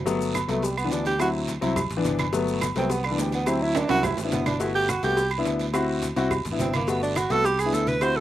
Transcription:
Already playing: G1
0.06 F#3 A3 B3, cowbell, low agogo, long guiro, maracas
0.21 high conga, maracas
0.35 cowbell, high conga, low timbale, low agogo, short guiro, claves, maracas
0.48 C2 F#3 A3 B3, cowbell, high conga, short guiro, maracas
0.62 G3, cowbell, high conga, low agogo, long guiro, maracas
0.77 B3, high conga, low agogo, claves, maracas
0.84 E3 B3 D4
0.91 D2 D4, cowbell, high conga, low timbale, short guiro, maracas
1.05 G4, low agogo, short guiro, maracas
1.19 F#3 C4 E4 F#4, cowbell, high conga, low agogo, long guiro, claves, maracas
1.34 high conga
1.48 cowbell, high conga, low timbale, low agogo, short guiro, maracas
1.61 C2 F#3 C4 E4, cowbell, low agogo, short guiro, maracas
1.76 cowbell, high conga, low conga, low agogo, long guiro, claves, maracas
1.90 A1, cowbell, high conga, maracas
1.97 E3 B3 D4
2.05 G1, cowbell, high conga, low timbale, low agogo, short guiro, maracas
2.19 cowbell, high conga, low agogo, short guiro, claves, maracas
2.33 F#3 A3 B3, cowbell, high conga, low agogo, long guiro, maracas
2.48 high conga, maracas
2.61 cowbell, high conga, low timbale, low agogo, short guiro, claves, maracas
2.76 C2 F#3 A3 B3 C4, cowbell, short guiro, maracas
2.90 B3, cowbell, high conga, low agogo, long guiro, maracas
3.04 D3, high conga, low agogo, claves
3.11 E3 B3 D4
3.18 D2 G3, cowbell, high conga, low timbale, short guiro, maracas
3.32 B3, low agogo, short guiro, maracas
3.46 F#3 C4 E4, cowbell, high conga, low agogo, long guiro, claves, maracas
3.61 E4, high conga
3.75 D4, cowbell, high conga, high timbale, low agogo, short guiro, maracas
3.89 C2 F#3 C4 E4 F#4, cowbell, high conga, high timbale, low agogo, short guiro, maracas
4.03 E4, cowbell, high conga, low conga, low timbale, low agogo, long guiro, claves, maracas
4.17 A1 G3, cowbell, high conga, low timbale, maracas
4.24 B3 D4 E4
4.32 G1 B3, cowbell, high conga, low timbale, low agogo, short guiro, maracas
4.46 D4, cowbell, high conga, low timbale, low agogo, short guiro, claves, maracas
4.59 A3 B3 E4 F#4, cowbell, low agogo, long guiro, maracas
4.75 G4, high conga
4.88 F#4, cowbell, high conga, low timbale, low agogo, short guiro, claves, maracas
5.03 C2 A3 B3 F#4 G4, cowbell, high conga, short guiro, maracas
5.17 cowbell, high conga, low agogo, long guiro, maracas
5.31 high conga, low agogo, claves
5.38 B3 D4 E4
5.45 D2, cowbell, low timbale, short guiro, maracas
5.59 low agogo, short guiro, maracas
5.73 C4 E4 F#4, cowbell, high conga, low agogo, long guiro, claves, maracas
5.89 high conga
6.02 cowbell, high conga, low timbale, low agogo, short guiro, maracas
6.16 C2 C4 E4 F#4, cowbell, high conga, low agogo, short guiro, maracas
6.31 cowbell, high conga, low conga, low agogo, long guiro, claves, maracas
6.45 A1, cowbell, high conga, low conga, maracas
6.52 B3 D4 E4
6.59 G1 C4, cowbell, high conga, low timbale, low agogo, short guiro, maracas
6.73 A#3, cowbell, high conga, low agogo, short guiro, claves, maracas
6.87 A3 B3 F#4, cowbell, low agogo, long guiro, maracas
7.02 D4, high conga, maracas
7.16 F#4, cowbell, high conga, low timbale, low agogo, short guiro, claves, maracas
7.30 C2 A3 B3 F#4 A4, cowbell, high conga, short guiro, maracas
7.44 G4, cowbell, low agogo, long guiro, maracas
7.59 G#4, low agogo, claves, maracas
7.65 B3 D4 E4
7.72 D2 A4, cowbell, high conga, low timbale, short guiro, maracas
7.87 B4, high conga, low agogo, short guiro, maracas
8.01 C4 E4 F#4 C5, cowbell, high conga, low agogo, long guiro, claves, maracas
8.16 A4, high conga

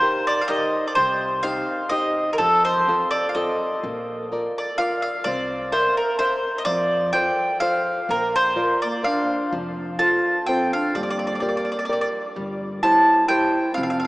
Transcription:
Already playing: D#2 C5
0.02 D#4 G4 A#4
0.27 D5
0.41 F5
0.48 D#4 G4 A#4 D#5
0.88 D5
0.95 C2 C3 C5
1.43 C4 D#4 G4 F5
1.89 C4 D#4 G4 D#5
2.33 A#4
2.38 F2 F3 A4
2.65 C5
2.88 C4 F4 A4
3.11 D5
3.29 F5
3.35 C4 F4 A4 D#5
3.83 A#1 A#3
4.32 F4 A#4 D5
4.58 D5
4.78 F4 A#4 D5 F5
5.02 F5
5.24 C2 C4 D5
5.72 A#4 C5 E5
5.97 A#4
6.19 A#4 C5 E5
6.58 D#5
6.65 F2 F3 D5
7.13 F4 A4 C5 G5
7.60 F4 A4 C5 F5
8.09 A#1 A#3 A#4
8.36 C5
8.56 F4 A#4 D5
8.82 A#3 D5
9.02 D4 F4 A#4 D5 F5
9.52 F1 F3
9.99 F4 A4 C5 A5
10.46 C4 F4 A4 C5 G5
10.73 D4 F5
10.95 G1 G3 A#3 D5
11.03 D5
11.10 D5
11.19 D5
11.27 D5
11.35 D5
11.40 G4 A#4 D5
11.48 D5
11.57 D5
11.65 D5
11.72 D5
11.79 D5
11.85 G4 D5
11.89 A#4 D5
12.01 D5
12.36 G1 G3
12.83 E4 G4 C5 A5
13.28 E4 G4 C5 G5
13.74 F1 F3 C4 F5
13.83 F5
13.90 F5
14.00 F5

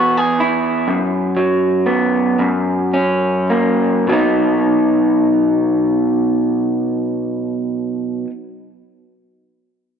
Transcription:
Already playing: E3 B3 E4 F#4
0.17 G#4
0.40 E4
0.88 F#2
1.36 F#3
1.86 B3
2.39 F#2
2.93 C#4
3.50 A#3
4.07 B2 F#3
4.12 B3 D#4

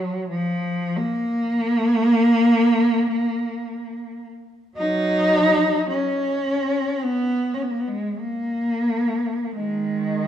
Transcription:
Already playing: F#3
0.30 F3
0.96 A#3
4.77 F#3 D#4
5.89 C#4
7.04 B3
7.54 C#4
7.62 B3
7.70 A#3
7.79 B3
7.87 G#3
8.19 A#3
9.56 D#3 G#3

